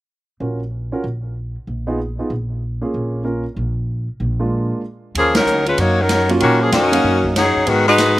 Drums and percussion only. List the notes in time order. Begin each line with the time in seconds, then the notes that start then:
5.15 ride
5.35 snare, ride
5.47 hi-hat pedal
5.66 ride
5.78 ride
6.09 snare, hi-hat pedal, ride
6.29 ride
6.40 ride
6.72 snare, hi-hat pedal, ride
6.93 ride
7.24 kick
7.36 snare, hi-hat pedal, ride
7.67 ride
7.98 snare, hi-hat pedal, ride